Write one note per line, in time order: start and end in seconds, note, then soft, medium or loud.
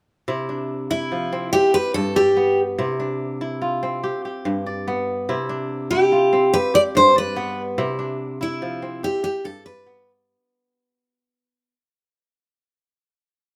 0.28 1.58 C3 medium
0.28 0.90 E4 medium
0.49 2.17 D4 soft
0.90 2.47 E4 medium
0.90 1.49 E4 medium
1.12 1.58 F3 medium
1.32 2.43 C4 medium
1.53 1.74 G4 medium
1.74 3.16 G4 medium
1.74 1.94 B4 medium
1.94 2.83 G2 medium
1.94 2.14 A4 medium
2.16 2.60 G4 medium
2.16 3.26 D5 medium
2.37 2.85 B3 medium
2.78 4.08 C3 medium
2.78 3.41 E4 medium
3.00 4.67 D4 medium
3.41 4.98 E4 medium
3.62 5.13 F4 medium
3.83 4.94 C4 medium
4.04 4.25 G4 medium
4.25 5.66 G4 medium
4.45 5.33 G2 medium
4.66 5.77 D5 medium
4.88 5.35 B3 medium
5.29 6.58 C3 medium
5.29 5.91 E4 medium
5.49 7.17 D4 medium
5.91 7.48 E4 medium
5.91 6.55 G4 medium
6.12 7.63 F4 medium
6.33 7.42 C4 medium
6.53 6.74 G4 medium
6.53 6.75 B4 medium
6.74 8.15 G4 medium
6.74 6.80 D5 medium
6.95 7.83 G2 medium
6.95 7.15 C5 medium
7.16 7.60 B4 medium
7.16 8.27 D5 medium
7.36 7.84 B3 medium
7.78 9.08 C3 medium
7.78 8.40 E4 medium
7.99 9.67 D4 medium
8.41 9.98 E4 medium
8.41 9.04 E4 medium
8.62 9.08 F3 medium
8.82 9.92 C4 medium
9.03 9.23 G4 medium
9.23 10.65 G4 medium
9.23 9.45 G4 medium
9.44 10.33 G2 medium
9.44 9.65 A4 medium
9.65 10.09 B4 medium
9.65 10.76 D5 medium
9.86 11.73 B3 medium